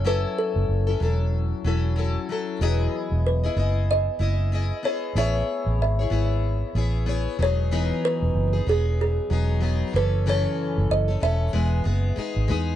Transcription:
X:1
M:4/4
L:1/16
Q:"Swing 16ths" 1/4=94
K:E
V:1 name="Kalimba"
B2 A8 z6 | z4 B4 d6 c2 | e4 e4 z6 c2- | c2 B4 G2 G6 B2 |
c4 d2 e6 z4 |]
V:2 name="Steel-string acoustic guitar"
[F,CEA]4- [F,CEA] [CEA] [F,CEA]4 [F,CEA]2 [F,CEA]2 [F,CEA]2 | [E,F,B,EGd]4- [E,F,B,EGd] [B,EGd] [B,EGd]4 [B,EGd]2 [B,EGd]2 [B,EGd]2 | [A,B,EGc]4- [A,B,EGc] [EGc] [B,EGc]4 [B,EGc]2 [B,EGc]2 [F,B,DG]2 | [E,F,B,DG]4- [E,F,B,DG] [B,DG] [F,B,DG]4 [F,B,DG]2 [F,B,DG]2 [E,A,CA]2 |
[F,,C,E,A,CA]4- [F,,C,E,A,CA] [E,A,CA] [E,A,CA]2 [E,G,B,G]2 [G,B,G]2 [G,B,DG]2 [G,B,DG]2 |]
V:3 name="Fingered electric bass" clef=bass
F,,,2 z F,,, F,,,2 E,,,4 E,,,4 z2 | E,,,2 z E,,,3 F,,,4 F,,,4 z2 | A,,,2 z A,,, G,,,2 G,,,4 A,,,4 E,,,2- | E,,,2 z E,,, F,,,2 E,,,4 E,,,4 F,,,2- |
F,,,2 z F,,, F,,,2 E,,,2 E,,,2 F,,,2 z G,,, E,,2 |]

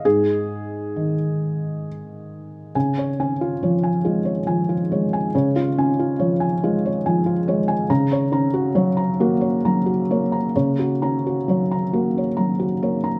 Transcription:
X:1
M:3/4
L:1/16
Q:1/4=68
K:C#mix
V:1 name="Felt piano"
G8 z4 | g c g E c g E c g E c g | c E g E c g E c g E c g | a c a F c a F c a F c a |
c F a F c a F c a F c a |]
V:2 name="Felt piano" clef=bass
[G,,G,]4 D,8 | C,2 C2 E,2 G,2 E,2 G,2 | C,2 C2 E,2 G,2 E,2 G,2 | C,2 C2 F,2 A,2 F,2 A,2 |
C,2 C2 F,2 A,2 F,2 A,2 |]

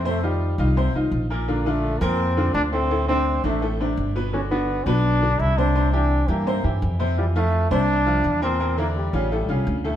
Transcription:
X:1
M:4/4
L:1/8
Q:1/4=168
K:F
V:1 name="Upright piano"
[C,Cc] [_E,_EF]2 [E,EF] [C,Cc] [E,EF]2 [B,,B,B] | [D,DF] [D,DF]2 [B,,B,B]2 [D,DF]2 [A,,A,A] | [A,,A,A] [C,CD]2 [C,CD] [A,,A,A] [C,CD]2 [=B,,=B,=B] | [D,D^F] [D,DF]2 [=B,,=B,=B]2 [D,DF]2 [C,Cc] |
[C,Cc] [E,EG]2 [E,EG] [C,Cc] [E,EG]2 [C,Cc] | [E,EF] [F,EF]2 [C,Cc]2 [F,EF]2 [B,,B,B] | [B,,B,B] [D,DE]2 [^C,^CF] [A,,A,A] [C,C^E]2 [A,,A,A] |]
V:2 name="Trombone"
A, G,3 z4 | B, A,2 C3 D C- | C C2 A,2 z3 | ^C =B,2 D3 E D- |
D D2 B,2 z3 | G, A,2 D4 C- | C B, G,2 G,2 z A, |]
V:3 name="Upright bass" clef=bass
F,,3 C,,2 C,, B,,,2- | B,,,3 F,,3 D,,2- | D,,3 A,,,3 G,,,2- | G,,,3 =B,,,3 C,,2- |
C,,3 G,,2 G,, F,,2- | F,,3 C,,3 E,,2- | E,,3 A,,,2 ^B,,, D,,2 |]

